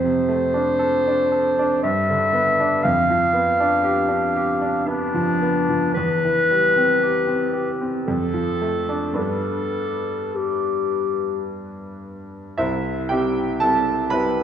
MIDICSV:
0, 0, Header, 1, 3, 480
1, 0, Start_track
1, 0, Key_signature, 0, "major"
1, 0, Tempo, 1011804
1, 1342, Time_signature, 3, 2, 24, 8
1, 2306, Tempo, 1063830
1, 3746, Tempo, 1147228
1, 5186, Tempo, 1102941
1, 5666, Tempo, 1018676
1, 6531, End_track
2, 0, Start_track
2, 0, Title_t, "Clarinet"
2, 0, Program_c, 0, 71
2, 0, Note_on_c, 0, 72, 72
2, 868, Note_on_c, 0, 76, 67
2, 875, Note_off_c, 0, 72, 0
2, 1340, Note_on_c, 0, 77, 61
2, 1347, Note_off_c, 0, 76, 0
2, 2315, Note_on_c, 0, 62, 64
2, 2322, Note_off_c, 0, 77, 0
2, 2789, Note_off_c, 0, 62, 0
2, 2792, Note_on_c, 0, 71, 79
2, 3594, Note_off_c, 0, 71, 0
2, 3746, Note_on_c, 0, 69, 52
2, 4203, Note_off_c, 0, 69, 0
2, 4218, Note_on_c, 0, 69, 54
2, 4709, Note_on_c, 0, 67, 47
2, 4715, Note_off_c, 0, 69, 0
2, 5187, Note_off_c, 0, 67, 0
2, 6531, End_track
3, 0, Start_track
3, 0, Title_t, "Grand piano"
3, 0, Program_c, 1, 0
3, 0, Note_on_c, 1, 41, 40
3, 6, Control_c, 1, 64, 127
3, 20, Note_on_c, 1, 48, 32
3, 136, Note_on_c, 1, 57, 32
3, 214, Note_off_c, 1, 48, 0
3, 255, Note_on_c, 1, 62, 33
3, 332, Note_off_c, 1, 57, 0
3, 376, Note_on_c, 1, 69, 37
3, 451, Note_off_c, 1, 62, 0
3, 509, Note_on_c, 1, 62, 31
3, 572, Note_off_c, 1, 69, 0
3, 625, Note_on_c, 1, 69, 36
3, 698, Note_off_c, 1, 62, 0
3, 754, Note_on_c, 1, 62, 32
3, 816, Note_off_c, 1, 69, 0
3, 843, Note_off_c, 1, 41, 0
3, 868, Note_off_c, 1, 62, 0
3, 872, Control_c, 1, 64, 0
3, 872, Note_on_c, 1, 43, 47
3, 953, Control_c, 1, 64, 127
3, 995, Note_on_c, 1, 50, 33
3, 1106, Note_on_c, 1, 59, 37
3, 1180, Note_off_c, 1, 50, 0
3, 1233, Note_on_c, 1, 62, 34
3, 1295, Note_off_c, 1, 59, 0
3, 1332, Note_off_c, 1, 43, 0
3, 1347, Note_off_c, 1, 62, 0
3, 1350, Control_c, 1, 64, 0
3, 1352, Note_on_c, 1, 41, 41
3, 1438, Control_c, 1, 64, 127
3, 1471, Note_on_c, 1, 53, 34
3, 1580, Note_on_c, 1, 59, 34
3, 1658, Note_off_c, 1, 53, 0
3, 1709, Note_on_c, 1, 62, 37
3, 1773, Note_off_c, 1, 59, 0
3, 1821, Note_on_c, 1, 67, 41
3, 1897, Note_off_c, 1, 62, 0
3, 1936, Note_on_c, 1, 62, 29
3, 2014, Note_off_c, 1, 67, 0
3, 2070, Note_on_c, 1, 67, 37
3, 2132, Note_off_c, 1, 62, 0
3, 2189, Note_on_c, 1, 62, 34
3, 2261, Note_off_c, 1, 67, 0
3, 2309, Note_on_c, 1, 59, 33
3, 2380, Note_off_c, 1, 62, 0
3, 2434, Note_on_c, 1, 53, 36
3, 2501, Note_off_c, 1, 59, 0
3, 2556, Note_on_c, 1, 59, 39
3, 2629, Note_off_c, 1, 53, 0
3, 2681, Note_on_c, 1, 53, 34
3, 2751, Note_off_c, 1, 59, 0
3, 2783, Note_off_c, 1, 41, 0
3, 2799, Note_off_c, 1, 53, 0
3, 2804, Control_c, 1, 64, 0
3, 2806, Note_on_c, 1, 40, 44
3, 2884, Control_c, 1, 64, 127
3, 2930, Note_on_c, 1, 52, 33
3, 3048, Note_on_c, 1, 55, 31
3, 3110, Note_off_c, 1, 52, 0
3, 3164, Note_on_c, 1, 60, 32
3, 3227, Note_off_c, 1, 55, 0
3, 3285, Note_on_c, 1, 67, 37
3, 3345, Note_off_c, 1, 60, 0
3, 3394, Note_on_c, 1, 60, 31
3, 3465, Note_off_c, 1, 67, 0
3, 3512, Note_on_c, 1, 67, 31
3, 3581, Note_off_c, 1, 60, 0
3, 3638, Note_on_c, 1, 60, 29
3, 3702, Note_off_c, 1, 67, 0
3, 3734, Note_off_c, 1, 40, 0
3, 3753, Note_off_c, 1, 60, 0
3, 3756, Control_c, 1, 64, 0
3, 3757, Note_on_c, 1, 41, 40
3, 3827, Control_c, 1, 64, 127
3, 3864, Note_on_c, 1, 53, 31
3, 3982, Note_on_c, 1, 57, 32
3, 4052, Note_off_c, 1, 53, 0
3, 4096, Note_on_c, 1, 62, 35
3, 4173, Note_off_c, 1, 57, 0
3, 4198, Note_off_c, 1, 62, 0
3, 4198, Note_on_c, 1, 43, 35
3, 4199, Note_on_c, 1, 59, 27
3, 4205, Note_on_c, 1, 62, 28
3, 4211, Note_off_c, 1, 41, 0
3, 4229, Control_c, 1, 64, 0
3, 4300, Control_c, 1, 64, 127
3, 5638, Note_off_c, 1, 43, 0
3, 5639, Note_off_c, 1, 59, 0
3, 5645, Note_off_c, 1, 62, 0
3, 5657, Note_on_c, 1, 76, 51
3, 5659, Note_on_c, 1, 64, 38
3, 5661, Note_on_c, 1, 72, 37
3, 5663, Note_on_c, 1, 36, 39
3, 5676, Control_c, 1, 64, 0
3, 5758, Control_c, 1, 64, 127
3, 5889, Note_off_c, 1, 64, 0
3, 5890, Note_off_c, 1, 72, 0
3, 5898, Note_on_c, 1, 79, 47
3, 5901, Note_off_c, 1, 36, 0
3, 5905, Note_off_c, 1, 76, 0
3, 5905, Note_on_c, 1, 67, 38
3, 5909, Note_on_c, 1, 55, 28
3, 5910, Note_on_c, 1, 64, 28
3, 5912, Note_on_c, 1, 60, 29
3, 6133, Note_off_c, 1, 55, 0
3, 6133, Note_off_c, 1, 67, 0
3, 6134, Note_off_c, 1, 64, 0
3, 6135, Note_off_c, 1, 60, 0
3, 6139, Note_on_c, 1, 81, 59
3, 6143, Note_on_c, 1, 69, 46
3, 6147, Note_off_c, 1, 79, 0
3, 6148, Note_on_c, 1, 60, 30
3, 6150, Note_on_c, 1, 55, 31
3, 6154, Note_on_c, 1, 64, 32
3, 6369, Note_off_c, 1, 69, 0
3, 6370, Note_off_c, 1, 60, 0
3, 6371, Note_off_c, 1, 55, 0
3, 6373, Note_off_c, 1, 64, 0
3, 6375, Note_on_c, 1, 83, 61
3, 6379, Note_on_c, 1, 71, 51
3, 6384, Note_off_c, 1, 81, 0
3, 6388, Note_on_c, 1, 55, 29
3, 6389, Note_on_c, 1, 64, 32
3, 6391, Note_on_c, 1, 60, 29
3, 6531, Note_off_c, 1, 55, 0
3, 6531, Note_off_c, 1, 60, 0
3, 6531, Note_off_c, 1, 64, 0
3, 6531, Note_off_c, 1, 71, 0
3, 6531, Note_off_c, 1, 83, 0
3, 6531, End_track
0, 0, End_of_file